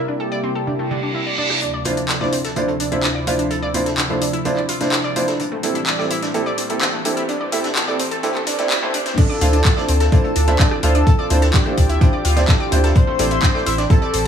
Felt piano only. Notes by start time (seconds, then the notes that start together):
Already playing: C4 E4 G4 A#4
1.85 D4 E4 F4 C5
2.21 D4 E4 F4 C5
2.56 D4 E4 F4 C5
2.92 D4 E4 F4 C5
3.27 D4 E4 F4 C5
3.74 D4 E4 F4 C5
4.10 D4 E4 F4 C5
4.45 D4 E4 F4 C5
4.81 D4 E4 F4 C5
5.16 D4 E4 F4 C5
5.64 C4 E4 G4 A4
5.99 C4 E4 G4 A4
6.34 C4 E4 G4 A4
6.70 C4 E4 G4 A4
7.05 C4 E4 G4 A4
7.52 C4 E4 G4 A4
7.88 C4 E4 G4 A4
8.23 C4 E4 G4 A4
8.59 C4 E4 G4 D5
8.82 C4 E4 G4 C5
9.41 D4 E4 F4 C5
9.77 D4 E4 F4 C5
10.12 D4 E4 F4 C5
10.48 D4 E4 F4 C5
10.83 D4 E4 F4 C5
11.30 D4 E4 F4 C5
11.66 D4 E4 F4 C5
12.01 D4 E4 F4 C5
12.37 D4 E4 F4 C5
12.72 D4 E4 F4 C5
13.19 C4 E4 G4 A4
13.55 C4 E4 G4 A4
13.90 C4 E4 G4 A4